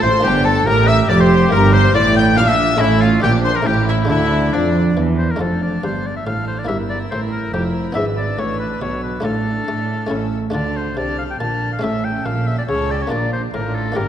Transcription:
Already playing: A3 C4 F4
0.02 A1 A2 A4 C5 C6
0.15 F4
0.19 A#3 D4 G4
0.24 G1 G2 D4 G4 G5
0.45 A4 A5
0.66 A1 A2 G4 A#4 A#5
0.87 E5 E6
1.09 F1 F2 D5 D6
1.19 C5 C6
1.49 G1 G2 A#3 E4 G4 A#4 A#5
1.53 G2
1.73 C5 C6
1.95 A1 A2 E4 D5 D6
2.16 G5 G6
2.37 A#1 A#2 D4 F5 F6
2.48 E5 E6
2.77 A3 C#4 E4 E5
2.81 A1 A2 E4
3.01 F4 F5
3.20 A#1 A#2 D4 G4
3.24 G5
3.44 C5 C6
3.55 A#4 A#5
3.62 A3 C#4 E4 G4
3.66 A1 A2 G4 G5
3.87 E4 E5
4.05 A3 D4 F4
4.09 D2 D3 D4 E4 E5
4.53 F2 F3 D4 D5
4.97 E2 E3
5.18 C5
5.30 A#4
5.36 A3 D4 F4 A4
5.40 F1 F2 D4 A4 F6
5.62 D5
5.83 G1 G2 C5
6.06 D5
6.16 E5
6.26 A1 A2 D4 A4 F5 F6
6.47 C5
6.59 D5
6.65 G1 G2 A#3 E4 A#4 E5 E6
6.69 G2 E4
6.89 D5
7.11 A1 A2 C5
7.32 A#4
7.53 F1 F2 E4 G4 A#4 E6
7.92 G#1 G#2 B3 D4 E4 E5 E6
7.96 G#2 D4 B4
8.17 D5
8.39 A1 A2 C#5
8.60 B4
8.82 B1 B2 C#5
9.03 B4
9.20 A3 D4 F4 A4 F6
9.24 A1 A2 D4 A4
9.67 A2 A3
10.07 A1 A3 C#4 E4 A4 E6
10.11 A2 C#4
10.50 D2 D3 A3 D4 F4 A4 D5
10.54 D3 D4 F6
10.76 C5
10.97 C2 C3 D4 A4 D5 F6
11.19 F5
11.30 G5
11.40 A#1 A#2 D4 A4 A5 F6
11.72 F5
11.79 A1 A2 A3 C#4 A4
11.83 A2 A4 E5 E6
12.05 G5
12.25 A#1 A#2 F5
12.47 E5
12.58 D5
12.68 C#2 C#3 C#4 A4 C#5 E6
12.91 G4 D5
13.01 C#5
13.07 A#2 A#3 D4 F4 D5
13.11 A#1 A#2 D4 A#5
13.33 C5
13.54 A1 A2 D4 F4 A#4 A#5
13.75 A4
13.92 A#3 D4 G4
13.97 G1 G2 D4 G4 A#4 A#5

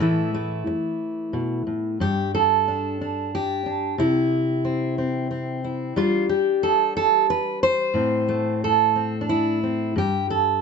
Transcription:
0.00 A2 E3 A3 E4
0.34 A3
0.67 muted steel-string acoustic guitar stroke
1.33 B2
1.67 A2
2.00 G2 G4
2.35 A4
2.68 D4
3.01 D4
3.35 G4
3.66 D4
3.98 C3 E4
4.65 C4
4.98 C4
5.31 C4
5.64 E4
5.96 G3 D4 F4
6.29 G4
6.63 A4
6.97 A4
7.30 B4
7.63 C5
7.94 A2 C4
8.29 A3
8.64 A4
8.96 C4
9.21 D4
9.29 E4
9.63 C4
9.96 G2 G4
10.30 A4

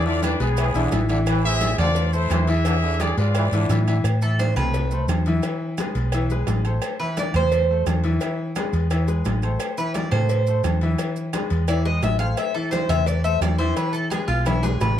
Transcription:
Already playing: E2
0.05 D3 E3 E4 F4 D5 E5
0.23 D4 B4, cowbell, high conga, low timbale, low agogo, short guiro, maracas
0.40 B1 G#3 B3 G#4 B4, cowbell, high conga, short guiro, maracas
0.57 E3, cowbell, high conga, low agogo, long guiro, maracas
0.74 B1 D3 E3 E4 E5, high conga, maracas
0.92 A1 E3 E4 E5, cowbell, high conga, low timbale, low agogo, short guiro, maracas
1.09 D3 E3 E4 E5, high conga, low agogo, short guiro, maracas
1.27 E3, cowbell, high conga, low agogo, long guiro, maracas
1.44 A3 E4 G#4 C5 E5, high conga
1.61 cowbell, high conga, low timbale, low agogo, short guiro, maracas
1.78 E2 D3 A3 F4 A4 C5 D5, cowbell, high conga, low conga, low agogo, short guiro, maracas
1.95 cowbell, high conga, long guiro, maracas
2.13 A3 E4 A4 C5, high conga, maracas
2.29 E2 E3, cowbell, high conga, low timbale, low agogo, short guiro, maracas
2.47 E3 E4 G#4 E5, cowbell, short guiro, maracas
2.65 D3 E3 E4 E5, cowbell, low agogo, long guiro, maracas
2.82 D3 E3 E4 E5
3.00 G#4 D5, cowbell, high conga, low timbale, low agogo, short guiro, maracas
3.17 G#2 G#3 F4 G#4 B4 D5, cowbell, high conga, short guiro, maracas
3.35 E3, cowbell, high conga, low agogo, long guiro, maracas
3.52 G#2 D3 E3 E4 E5, high conga, maracas
3.69 A2 E3 E4 E5, cowbell, high conga, low timbale, low agogo, short guiro, maracas
3.87 D3 E3 E4 E5, high conga, low agogo, short guiro, maracas
4.04 A2, cowbell, high conga, low agogo, maracas
4.22 E3 E4 A4 E5, high conga, maracas
4.39 C5, cowbell, high conga, low timbale, low agogo, maracas
4.56 C2 A3 C4 A4 B4, cowbell, high conga, low conga, low agogo, maracas
4.74 cowbell, high conga, low conga, maracas
4.91 A3 A4 C5, high conga, maracas
5.08 E2, cowbell, high conga, low timbale, low agogo, maracas
5.26 E3 E4 E5, cowbell, high conga, maracas
5.43 E3 E4 E5, cowbell, high conga, low agogo, maracas
5.61 high conga
5.78 G#3 G#4 B4, cowbell, high conga, low timbale, low agogo, maracas
5.95 B1, cowbell, high conga, maracas
6.12 E3 E4 E5, cowbell, high conga, low agogo, maracas
6.30 G#3 G#4 B4, high conga, maracas
6.47 A1, cowbell, high conga, low timbale, low agogo, maracas
6.65 A3 A4 C5, high conga, low agogo, maracas
6.82 cowbell, high conga, low agogo, maracas
7.00 E3 E4 B4 E5, high conga
7.17 D5, cowbell, high conga, low timbale, low agogo, maracas
7.34 E2 A3 A4 C5, cowbell, high conga, low conga, low agogo, maracas
7.52 cowbell, high conga, maracas
7.70 A3 A4 C5, high conga
7.86 E2, cowbell, high conga, low timbale, low agogo, maracas
8.04 E3 E4 E5, cowbell, high conga, maracas
8.21 E3 E4 E5, cowbell, low agogo, maracas
8.39 high conga
8.56 G#3 G#4 B4, cowbell, high conga, low timbale, low agogo, maracas
8.73 E2, cowbell, high conga, maracas
8.90 E3 E4 E5, cowbell, high conga, low agogo, maracas
9.08 G#3 G#4 B4, high conga, maracas
9.25 A1, cowbell, high conga, low timbale, low agogo, maracas
9.42 A3 A4 C5, high conga, low agogo, maracas
9.60 cowbell, high conga, low agogo, maracas
9.78 E3 E4 B4 E5, high conga, maracas
9.94 D5, cowbell, high conga, low timbale, low agogo, maracas
10.11 A2 A3 A4 C5, cowbell, high conga, low conga, low agogo, maracas
10.29 cowbell, high conga, maracas
10.47 A3 A4 C5, high conga, maracas
10.64 E2, cowbell, high conga, low timbale, low agogo, maracas
10.81 E3 E4 E5, cowbell, high conga, maracas
10.98 E3 E4 E5, cowbell, high conga, low agogo, maracas
11.16 high conga, maracas
11.33 G#3 G#4 B4, cowbell, high conga, low timbale, low agogo, maracas
11.50 E2, cowbell, high conga, maracas
11.68 E3 E4 D5 E5, cowbell, high conga, low agogo, maracas
11.85 G#3 G#4 B4 D#5, high conga
12.02 A1 E5, cowbell, high conga, low timbale, low agogo, maracas
12.19 A3 A4 C5 F5, high conga, low agogo, maracas
12.37 E5, cowbell, high conga, low agogo, maracas
12.55 E3 E4 A4 E5, high conga
12.71 C5, cowbell, high conga, low timbale, low agogo, maracas
12.89 E2 A3 A4 C5 E5, cowbell, high conga, low conga, low agogo, maracas
13.06 D5, cowbell, high conga, maracas
13.24 A3 A4 C5 E5, high conga, maracas
13.41 E2 D5, cowbell, high conga, low timbale, low agogo, maracas
13.58 E3 E4 C5 E5, cowbell, high conga, maracas
13.76 E3 E4 B4 E5, cowbell, high conga, low agogo, maracas
13.93 A4, high conga, maracas
14.10 G#3 G#4 B4, cowbell, high conga, low timbale, low agogo, maracas
14.28 B1 F4, cowbell, high conga, maracas
14.46 E3 E4 E5, cowbell, high conga, low agogo, maracas
14.63 G#3 G#4 B4, high conga, maracas
14.80 A1 B4, cowbell, low conga, low timbale, low agogo, maracas

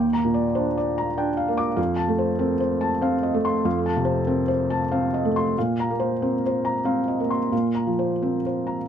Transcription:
Already playing: D#2 A#3 G5
0.13 A#5
0.25 A#2
0.34 D5
0.55 D4 C5
0.78 D5
0.98 A#5
1.18 D4 G5
1.37 F5
1.48 A#3
1.57 D6
1.77 F2 F5
1.96 A5
2.08 A3
2.18 C5
2.39 C4 A#4
2.60 C5
2.81 A5
3.02 C4 F5
3.23 D#5
3.34 A3
3.45 C6
3.65 F2 F5
3.86 A5
3.97 C3
4.05 C5
4.27 C4 A#4
4.48 C5
4.70 A5
4.92 C4 F5
5.14 D#5
5.25 A3
5.36 C6
5.58 A#2 F5
5.80 A#5
5.91 A#3
6.00 C5
6.22 C4 A#4
6.46 C5
6.65 A#5
6.85 C4 F5
7.08 D#5
7.20 A#3
7.30 C6
7.52 A#2 F5
7.75 A#5
7.87 F3
7.99 C5
8.22 C4 A#4
8.46 C5
8.67 A#5

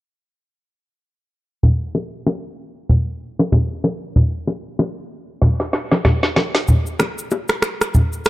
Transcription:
1.63 low conga
1.95 high bongo, low bongo
2.27 high bongo, low bongo
2.89 low conga
3.39 low bongo
3.52 high bongo, low conga
3.84 low bongo
4.16 low conga
4.47 high bongo, low bongo
4.79 high bongo, low bongo
5.42 snare, low conga
5.60 snare
5.73 snare
5.92 snare, low bongo
6.05 snare, high bongo, low conga
6.23 snare
6.36 snare, low bongo
6.55 snare
6.68 low conga, shaker
6.86 shaker
7.00 finger snap, cross-stick, high bongo, low bongo, shaker
7.18 shaker
7.31 high bongo, shaker
7.48 finger snap, cross-stick, shaker
7.62 finger snap, cross-stick, shaker
7.81 finger snap, cross-stick, shaker
7.94 low conga, shaker
8.13 shaker
8.25 finger snap, cross-stick, shaker

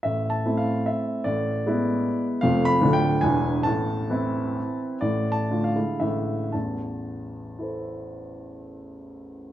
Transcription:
0.03 A1 A2 E5
0.30 A5
0.45 A3 C4 E4
0.57 F5
0.86 E5
1.24 A1 A2 D5
1.66 G#3 B3 E4
2.41 F1 F2 A3 C4 F4 F5
2.65 B5
2.81 D1 D2 A3 D4 F4
2.93 G5
3.21 E1 E2 E3 D4 E4 G#5
3.63 A1 A2 A5
4.10 E3 C4 E4
5.01 A1 A2 D5
5.32 A5
5.50 D3 A3 F4
5.64 F5
5.76 D3 G#3 E4
6.00 A1 A2 E5
6.52 A1 E2 A5
7.59 E4 A4 C5

